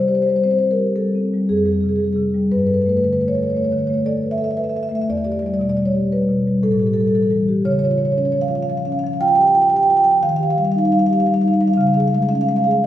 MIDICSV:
0, 0, Header, 1, 2, 480
1, 0, Start_track
1, 0, Tempo, 516351
1, 2347, Time_signature, 5, 2, 24, 8
1, 11960, End_track
2, 0, Start_track
2, 0, Title_t, "Marimba"
2, 0, Program_c, 0, 12
2, 0, Note_on_c, 0, 48, 44
2, 0, Note_on_c, 0, 72, 54
2, 75, Note_off_c, 0, 72, 0
2, 75, Note_on_c, 0, 72, 54
2, 89, Note_on_c, 0, 67, 34
2, 139, Note_off_c, 0, 72, 0
2, 139, Note_on_c, 0, 72, 53
2, 206, Note_off_c, 0, 72, 0
2, 206, Note_on_c, 0, 72, 55
2, 249, Note_on_c, 0, 55, 33
2, 271, Note_off_c, 0, 72, 0
2, 271, Note_on_c, 0, 72, 51
2, 335, Note_off_c, 0, 72, 0
2, 335, Note_on_c, 0, 72, 55
2, 346, Note_off_c, 0, 67, 0
2, 404, Note_off_c, 0, 72, 0
2, 404, Note_on_c, 0, 72, 53
2, 406, Note_on_c, 0, 60, 33
2, 475, Note_off_c, 0, 72, 0
2, 475, Note_on_c, 0, 72, 55
2, 507, Note_off_c, 0, 55, 0
2, 546, Note_off_c, 0, 72, 0
2, 546, Note_on_c, 0, 72, 49
2, 560, Note_on_c, 0, 55, 29
2, 624, Note_off_c, 0, 72, 0
2, 659, Note_on_c, 0, 70, 53
2, 667, Note_off_c, 0, 60, 0
2, 730, Note_on_c, 0, 67, 34
2, 826, Note_off_c, 0, 55, 0
2, 890, Note_on_c, 0, 69, 51
2, 891, Note_off_c, 0, 70, 0
2, 891, Note_on_c, 0, 55, 32
2, 993, Note_off_c, 0, 67, 0
2, 1069, Note_on_c, 0, 60, 35
2, 1153, Note_off_c, 0, 55, 0
2, 1240, Note_on_c, 0, 55, 34
2, 1323, Note_off_c, 0, 60, 0
2, 1345, Note_off_c, 0, 48, 0
2, 1359, Note_off_c, 0, 69, 0
2, 1386, Note_on_c, 0, 68, 54
2, 1389, Note_on_c, 0, 41, 46
2, 1392, Note_off_c, 0, 55, 0
2, 1461, Note_off_c, 0, 68, 0
2, 1461, Note_on_c, 0, 68, 44
2, 1536, Note_on_c, 0, 55, 31
2, 1541, Note_off_c, 0, 68, 0
2, 1541, Note_on_c, 0, 68, 48
2, 1599, Note_off_c, 0, 68, 0
2, 1599, Note_on_c, 0, 68, 43
2, 1679, Note_off_c, 0, 68, 0
2, 1679, Note_on_c, 0, 68, 44
2, 1708, Note_on_c, 0, 48, 34
2, 1756, Note_off_c, 0, 68, 0
2, 1756, Note_on_c, 0, 68, 41
2, 1800, Note_off_c, 0, 55, 0
2, 1821, Note_off_c, 0, 68, 0
2, 1821, Note_on_c, 0, 68, 47
2, 1859, Note_on_c, 0, 55, 34
2, 1900, Note_off_c, 0, 68, 0
2, 1900, Note_on_c, 0, 68, 43
2, 1965, Note_off_c, 0, 48, 0
2, 1978, Note_off_c, 0, 68, 0
2, 1978, Note_on_c, 0, 68, 44
2, 2013, Note_on_c, 0, 48, 35
2, 2082, Note_off_c, 0, 68, 0
2, 2120, Note_off_c, 0, 55, 0
2, 2176, Note_on_c, 0, 55, 38
2, 2276, Note_off_c, 0, 48, 0
2, 2321, Note_off_c, 0, 41, 0
2, 2339, Note_on_c, 0, 71, 60
2, 2341, Note_off_c, 0, 55, 0
2, 2342, Note_on_c, 0, 43, 43
2, 2407, Note_off_c, 0, 71, 0
2, 2407, Note_on_c, 0, 71, 50
2, 2479, Note_off_c, 0, 71, 0
2, 2479, Note_on_c, 0, 71, 50
2, 2498, Note_on_c, 0, 69, 35
2, 2547, Note_off_c, 0, 71, 0
2, 2547, Note_on_c, 0, 71, 46
2, 2619, Note_off_c, 0, 71, 0
2, 2619, Note_on_c, 0, 71, 50
2, 2659, Note_on_c, 0, 57, 35
2, 2688, Note_off_c, 0, 71, 0
2, 2688, Note_on_c, 0, 71, 47
2, 2756, Note_off_c, 0, 69, 0
2, 2760, Note_off_c, 0, 71, 0
2, 2760, Note_on_c, 0, 71, 51
2, 2821, Note_on_c, 0, 50, 35
2, 2827, Note_off_c, 0, 71, 0
2, 2827, Note_on_c, 0, 71, 46
2, 2906, Note_off_c, 0, 71, 0
2, 2906, Note_on_c, 0, 71, 54
2, 2916, Note_off_c, 0, 57, 0
2, 2974, Note_on_c, 0, 57, 30
2, 2985, Note_off_c, 0, 71, 0
2, 2985, Note_on_c, 0, 71, 45
2, 3029, Note_off_c, 0, 71, 0
2, 3049, Note_on_c, 0, 73, 56
2, 3077, Note_off_c, 0, 50, 0
2, 3114, Note_off_c, 0, 73, 0
2, 3114, Note_on_c, 0, 73, 47
2, 3141, Note_on_c, 0, 69, 34
2, 3185, Note_off_c, 0, 73, 0
2, 3185, Note_on_c, 0, 73, 48
2, 3234, Note_off_c, 0, 57, 0
2, 3253, Note_off_c, 0, 73, 0
2, 3253, Note_on_c, 0, 73, 47
2, 3297, Note_on_c, 0, 57, 31
2, 3315, Note_off_c, 0, 73, 0
2, 3315, Note_on_c, 0, 73, 45
2, 3388, Note_off_c, 0, 73, 0
2, 3388, Note_on_c, 0, 73, 45
2, 3397, Note_off_c, 0, 69, 0
2, 3454, Note_off_c, 0, 73, 0
2, 3454, Note_on_c, 0, 73, 48
2, 3459, Note_on_c, 0, 50, 34
2, 3520, Note_off_c, 0, 73, 0
2, 3520, Note_on_c, 0, 73, 42
2, 3555, Note_off_c, 0, 57, 0
2, 3597, Note_off_c, 0, 73, 0
2, 3597, Note_on_c, 0, 73, 50
2, 3622, Note_on_c, 0, 57, 38
2, 3662, Note_off_c, 0, 73, 0
2, 3662, Note_on_c, 0, 73, 43
2, 3716, Note_off_c, 0, 50, 0
2, 3745, Note_off_c, 0, 73, 0
2, 3766, Note_on_c, 0, 69, 44
2, 3775, Note_on_c, 0, 74, 64
2, 3877, Note_off_c, 0, 57, 0
2, 3937, Note_on_c, 0, 71, 26
2, 4008, Note_off_c, 0, 74, 0
2, 4009, Note_on_c, 0, 76, 61
2, 4029, Note_off_c, 0, 69, 0
2, 4070, Note_off_c, 0, 76, 0
2, 4070, Note_on_c, 0, 76, 46
2, 4098, Note_off_c, 0, 71, 0
2, 4099, Note_on_c, 0, 69, 40
2, 4127, Note_off_c, 0, 76, 0
2, 4127, Note_on_c, 0, 76, 55
2, 4190, Note_off_c, 0, 76, 0
2, 4190, Note_on_c, 0, 76, 48
2, 4248, Note_off_c, 0, 76, 0
2, 4248, Note_on_c, 0, 76, 50
2, 4253, Note_on_c, 0, 71, 34
2, 4312, Note_off_c, 0, 76, 0
2, 4312, Note_on_c, 0, 76, 46
2, 4353, Note_off_c, 0, 69, 0
2, 4363, Note_off_c, 0, 76, 0
2, 4363, Note_on_c, 0, 76, 52
2, 4414, Note_off_c, 0, 71, 0
2, 4419, Note_on_c, 0, 69, 34
2, 4429, Note_off_c, 0, 76, 0
2, 4429, Note_on_c, 0, 76, 48
2, 4488, Note_off_c, 0, 76, 0
2, 4488, Note_on_c, 0, 76, 50
2, 4545, Note_off_c, 0, 76, 0
2, 4545, Note_on_c, 0, 76, 47
2, 4570, Note_on_c, 0, 57, 38
2, 4603, Note_off_c, 0, 76, 0
2, 4603, Note_on_c, 0, 76, 55
2, 4661, Note_off_c, 0, 76, 0
2, 4661, Note_on_c, 0, 76, 49
2, 4670, Note_off_c, 0, 69, 0
2, 4693, Note_off_c, 0, 43, 0
2, 4698, Note_off_c, 0, 76, 0
2, 4731, Note_off_c, 0, 57, 0
2, 4738, Note_on_c, 0, 40, 49
2, 4739, Note_on_c, 0, 74, 65
2, 4809, Note_off_c, 0, 74, 0
2, 4809, Note_on_c, 0, 74, 51
2, 4875, Note_off_c, 0, 74, 0
2, 4875, Note_on_c, 0, 74, 59
2, 4880, Note_on_c, 0, 67, 36
2, 4944, Note_off_c, 0, 74, 0
2, 4944, Note_on_c, 0, 74, 51
2, 5013, Note_off_c, 0, 74, 0
2, 5013, Note_on_c, 0, 74, 56
2, 5043, Note_on_c, 0, 55, 35
2, 5078, Note_off_c, 0, 74, 0
2, 5078, Note_on_c, 0, 74, 50
2, 5144, Note_off_c, 0, 67, 0
2, 5148, Note_off_c, 0, 74, 0
2, 5148, Note_on_c, 0, 74, 59
2, 5199, Note_on_c, 0, 47, 35
2, 5217, Note_off_c, 0, 74, 0
2, 5217, Note_on_c, 0, 74, 54
2, 5293, Note_off_c, 0, 74, 0
2, 5293, Note_on_c, 0, 74, 59
2, 5306, Note_off_c, 0, 55, 0
2, 5363, Note_off_c, 0, 74, 0
2, 5363, Note_on_c, 0, 74, 54
2, 5369, Note_on_c, 0, 55, 32
2, 5430, Note_off_c, 0, 74, 0
2, 5443, Note_on_c, 0, 73, 54
2, 5464, Note_off_c, 0, 47, 0
2, 5533, Note_on_c, 0, 67, 34
2, 5629, Note_off_c, 0, 55, 0
2, 5680, Note_off_c, 0, 73, 0
2, 5692, Note_on_c, 0, 71, 53
2, 5696, Note_on_c, 0, 55, 36
2, 5791, Note_off_c, 0, 67, 0
2, 5848, Note_on_c, 0, 47, 35
2, 5951, Note_off_c, 0, 55, 0
2, 6019, Note_on_c, 0, 55, 38
2, 6107, Note_off_c, 0, 47, 0
2, 6140, Note_off_c, 0, 40, 0
2, 6153, Note_off_c, 0, 71, 0
2, 6163, Note_on_c, 0, 45, 53
2, 6165, Note_on_c, 0, 69, 62
2, 6177, Note_off_c, 0, 55, 0
2, 6239, Note_off_c, 0, 69, 0
2, 6239, Note_on_c, 0, 69, 48
2, 6316, Note_off_c, 0, 69, 0
2, 6316, Note_on_c, 0, 69, 54
2, 6336, Note_on_c, 0, 67, 31
2, 6383, Note_off_c, 0, 69, 0
2, 6383, Note_on_c, 0, 69, 51
2, 6446, Note_off_c, 0, 69, 0
2, 6446, Note_on_c, 0, 69, 56
2, 6484, Note_on_c, 0, 55, 37
2, 6511, Note_off_c, 0, 69, 0
2, 6511, Note_on_c, 0, 69, 50
2, 6577, Note_off_c, 0, 69, 0
2, 6577, Note_on_c, 0, 69, 52
2, 6590, Note_off_c, 0, 67, 0
2, 6646, Note_off_c, 0, 69, 0
2, 6646, Note_on_c, 0, 69, 51
2, 6653, Note_on_c, 0, 52, 41
2, 6717, Note_off_c, 0, 69, 0
2, 6717, Note_on_c, 0, 69, 51
2, 6742, Note_off_c, 0, 55, 0
2, 6788, Note_off_c, 0, 69, 0
2, 6788, Note_on_c, 0, 69, 47
2, 6797, Note_on_c, 0, 55, 37
2, 6856, Note_off_c, 0, 69, 0
2, 6905, Note_off_c, 0, 52, 0
2, 6959, Note_on_c, 0, 67, 42
2, 7056, Note_off_c, 0, 55, 0
2, 7092, Note_off_c, 0, 45, 0
2, 7113, Note_on_c, 0, 49, 52
2, 7113, Note_on_c, 0, 73, 65
2, 7122, Note_off_c, 0, 67, 0
2, 7177, Note_off_c, 0, 73, 0
2, 7177, Note_on_c, 0, 73, 52
2, 7242, Note_off_c, 0, 73, 0
2, 7242, Note_on_c, 0, 73, 59
2, 7282, Note_on_c, 0, 65, 38
2, 7297, Note_off_c, 0, 73, 0
2, 7297, Note_on_c, 0, 73, 54
2, 7353, Note_off_c, 0, 73, 0
2, 7353, Note_on_c, 0, 73, 58
2, 7417, Note_off_c, 0, 73, 0
2, 7417, Note_on_c, 0, 73, 49
2, 7439, Note_on_c, 0, 53, 34
2, 7485, Note_off_c, 0, 73, 0
2, 7485, Note_on_c, 0, 73, 53
2, 7540, Note_off_c, 0, 65, 0
2, 7548, Note_off_c, 0, 73, 0
2, 7548, Note_on_c, 0, 73, 54
2, 7587, Note_on_c, 0, 61, 36
2, 7603, Note_off_c, 0, 73, 0
2, 7603, Note_on_c, 0, 73, 56
2, 7671, Note_off_c, 0, 73, 0
2, 7671, Note_on_c, 0, 73, 55
2, 7699, Note_off_c, 0, 53, 0
2, 7734, Note_off_c, 0, 73, 0
2, 7734, Note_on_c, 0, 73, 58
2, 7752, Note_on_c, 0, 53, 39
2, 7810, Note_off_c, 0, 73, 0
2, 7822, Note_on_c, 0, 77, 62
2, 7853, Note_off_c, 0, 61, 0
2, 7885, Note_off_c, 0, 77, 0
2, 7885, Note_on_c, 0, 77, 48
2, 7905, Note_on_c, 0, 65, 37
2, 7950, Note_off_c, 0, 77, 0
2, 7950, Note_on_c, 0, 77, 52
2, 8015, Note_off_c, 0, 53, 0
2, 8018, Note_off_c, 0, 77, 0
2, 8018, Note_on_c, 0, 77, 49
2, 8078, Note_on_c, 0, 53, 37
2, 8084, Note_off_c, 0, 77, 0
2, 8084, Note_on_c, 0, 77, 53
2, 8156, Note_off_c, 0, 77, 0
2, 8156, Note_on_c, 0, 77, 49
2, 8172, Note_off_c, 0, 65, 0
2, 8229, Note_off_c, 0, 77, 0
2, 8229, Note_on_c, 0, 77, 50
2, 8244, Note_on_c, 0, 61, 38
2, 8293, Note_off_c, 0, 77, 0
2, 8293, Note_on_c, 0, 77, 52
2, 8338, Note_off_c, 0, 53, 0
2, 8358, Note_off_c, 0, 77, 0
2, 8358, Note_on_c, 0, 77, 54
2, 8399, Note_on_c, 0, 53, 40
2, 8428, Note_off_c, 0, 77, 0
2, 8428, Note_on_c, 0, 77, 48
2, 8489, Note_off_c, 0, 77, 0
2, 8489, Note_on_c, 0, 77, 53
2, 8500, Note_off_c, 0, 61, 0
2, 8524, Note_off_c, 0, 77, 0
2, 8558, Note_on_c, 0, 65, 44
2, 8559, Note_on_c, 0, 79, 77
2, 8628, Note_off_c, 0, 79, 0
2, 8628, Note_on_c, 0, 79, 58
2, 8656, Note_off_c, 0, 53, 0
2, 8696, Note_off_c, 0, 79, 0
2, 8696, Note_on_c, 0, 79, 67
2, 8721, Note_on_c, 0, 67, 32
2, 8749, Note_off_c, 0, 79, 0
2, 8749, Note_on_c, 0, 79, 61
2, 8806, Note_off_c, 0, 79, 0
2, 8806, Note_on_c, 0, 79, 63
2, 8814, Note_off_c, 0, 65, 0
2, 8877, Note_off_c, 0, 79, 0
2, 8877, Note_on_c, 0, 79, 59
2, 8879, Note_off_c, 0, 67, 0
2, 8881, Note_on_c, 0, 65, 41
2, 8941, Note_off_c, 0, 79, 0
2, 8941, Note_on_c, 0, 79, 68
2, 9014, Note_off_c, 0, 79, 0
2, 9014, Note_on_c, 0, 79, 64
2, 9044, Note_on_c, 0, 67, 38
2, 9077, Note_off_c, 0, 79, 0
2, 9077, Note_on_c, 0, 79, 65
2, 9132, Note_off_c, 0, 65, 0
2, 9137, Note_off_c, 0, 79, 0
2, 9137, Note_on_c, 0, 79, 61
2, 9198, Note_off_c, 0, 67, 0
2, 9200, Note_on_c, 0, 65, 40
2, 9205, Note_off_c, 0, 79, 0
2, 9205, Note_on_c, 0, 79, 64
2, 9268, Note_off_c, 0, 79, 0
2, 9268, Note_on_c, 0, 79, 62
2, 9333, Note_off_c, 0, 79, 0
2, 9333, Note_on_c, 0, 79, 67
2, 9345, Note_on_c, 0, 53, 38
2, 9401, Note_off_c, 0, 79, 0
2, 9401, Note_on_c, 0, 79, 59
2, 9451, Note_off_c, 0, 65, 0
2, 9469, Note_off_c, 0, 49, 0
2, 9472, Note_off_c, 0, 79, 0
2, 9507, Note_on_c, 0, 77, 74
2, 9508, Note_off_c, 0, 53, 0
2, 9510, Note_on_c, 0, 51, 57
2, 9565, Note_off_c, 0, 77, 0
2, 9565, Note_on_c, 0, 77, 62
2, 9634, Note_off_c, 0, 77, 0
2, 9634, Note_on_c, 0, 77, 62
2, 9664, Note_on_c, 0, 67, 41
2, 9695, Note_off_c, 0, 77, 0
2, 9695, Note_on_c, 0, 77, 56
2, 9764, Note_off_c, 0, 77, 0
2, 9764, Note_on_c, 0, 77, 68
2, 9828, Note_on_c, 0, 55, 39
2, 9835, Note_off_c, 0, 77, 0
2, 9835, Note_on_c, 0, 77, 61
2, 9895, Note_off_c, 0, 77, 0
2, 9895, Note_on_c, 0, 77, 62
2, 9925, Note_off_c, 0, 67, 0
2, 9962, Note_off_c, 0, 77, 0
2, 9962, Note_on_c, 0, 77, 59
2, 9998, Note_on_c, 0, 63, 44
2, 10025, Note_off_c, 0, 77, 0
2, 10025, Note_on_c, 0, 77, 67
2, 10087, Note_off_c, 0, 55, 0
2, 10088, Note_off_c, 0, 77, 0
2, 10088, Note_on_c, 0, 77, 56
2, 10149, Note_on_c, 0, 55, 37
2, 10153, Note_off_c, 0, 77, 0
2, 10153, Note_on_c, 0, 77, 67
2, 10219, Note_off_c, 0, 77, 0
2, 10219, Note_on_c, 0, 77, 58
2, 10252, Note_off_c, 0, 63, 0
2, 10284, Note_off_c, 0, 77, 0
2, 10284, Note_on_c, 0, 77, 65
2, 10320, Note_on_c, 0, 67, 41
2, 10344, Note_off_c, 0, 77, 0
2, 10344, Note_on_c, 0, 77, 60
2, 10407, Note_off_c, 0, 55, 0
2, 10412, Note_off_c, 0, 77, 0
2, 10412, Note_on_c, 0, 77, 67
2, 10470, Note_off_c, 0, 77, 0
2, 10470, Note_on_c, 0, 77, 56
2, 10482, Note_on_c, 0, 55, 42
2, 10541, Note_off_c, 0, 77, 0
2, 10541, Note_on_c, 0, 77, 68
2, 10574, Note_off_c, 0, 67, 0
2, 10611, Note_off_c, 0, 77, 0
2, 10611, Note_on_c, 0, 77, 58
2, 10630, Note_on_c, 0, 63, 38
2, 10668, Note_off_c, 0, 77, 0
2, 10668, Note_on_c, 0, 77, 60
2, 10724, Note_off_c, 0, 77, 0
2, 10724, Note_on_c, 0, 77, 58
2, 10736, Note_off_c, 0, 55, 0
2, 10789, Note_off_c, 0, 77, 0
2, 10789, Note_on_c, 0, 77, 61
2, 10793, Note_on_c, 0, 55, 41
2, 10853, Note_off_c, 0, 77, 0
2, 10853, Note_on_c, 0, 77, 59
2, 10891, Note_off_c, 0, 63, 0
2, 10909, Note_off_c, 0, 77, 0
2, 10909, Note_on_c, 0, 77, 67
2, 10920, Note_off_c, 0, 51, 0
2, 10945, Note_on_c, 0, 49, 59
2, 10956, Note_off_c, 0, 55, 0
2, 10975, Note_off_c, 0, 77, 0
2, 10975, Note_on_c, 0, 77, 62
2, 11035, Note_off_c, 0, 77, 0
2, 11035, Note_on_c, 0, 77, 60
2, 11100, Note_off_c, 0, 77, 0
2, 11100, Note_on_c, 0, 77, 58
2, 11122, Note_on_c, 0, 68, 37
2, 11156, Note_off_c, 0, 77, 0
2, 11156, Note_on_c, 0, 77, 67
2, 11225, Note_off_c, 0, 77, 0
2, 11225, Note_on_c, 0, 77, 57
2, 11280, Note_on_c, 0, 56, 40
2, 11290, Note_off_c, 0, 77, 0
2, 11290, Note_on_c, 0, 77, 68
2, 11363, Note_off_c, 0, 77, 0
2, 11363, Note_on_c, 0, 77, 61
2, 11379, Note_off_c, 0, 68, 0
2, 11422, Note_off_c, 0, 77, 0
2, 11422, Note_on_c, 0, 77, 67
2, 11435, Note_on_c, 0, 61, 44
2, 11482, Note_off_c, 0, 77, 0
2, 11482, Note_on_c, 0, 77, 58
2, 11536, Note_off_c, 0, 77, 0
2, 11536, Note_on_c, 0, 77, 67
2, 11539, Note_off_c, 0, 56, 0
2, 11606, Note_on_c, 0, 56, 40
2, 11607, Note_off_c, 0, 77, 0
2, 11607, Note_on_c, 0, 77, 61
2, 11679, Note_off_c, 0, 77, 0
2, 11679, Note_on_c, 0, 77, 68
2, 11698, Note_off_c, 0, 61, 0
2, 11751, Note_off_c, 0, 77, 0
2, 11751, Note_on_c, 0, 77, 62
2, 11773, Note_on_c, 0, 68, 40
2, 11815, Note_off_c, 0, 77, 0
2, 11815, Note_on_c, 0, 77, 64
2, 11864, Note_off_c, 0, 56, 0
2, 11888, Note_off_c, 0, 77, 0
2, 11892, Note_off_c, 0, 49, 0
2, 11931, Note_off_c, 0, 68, 0
2, 11960, End_track
0, 0, End_of_file